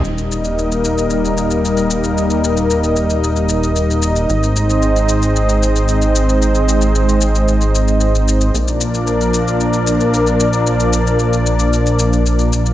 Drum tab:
SH |xxxxxxxxxxxxxxxx|xxxxxxxxxxxxxxxx|xxxxxxxxxxxxxxxx|xxxxxxxxxxxxxxxx|

SH |xxxxxxxxxxxxxxxx|xxxxxxxxxxxxxxxx|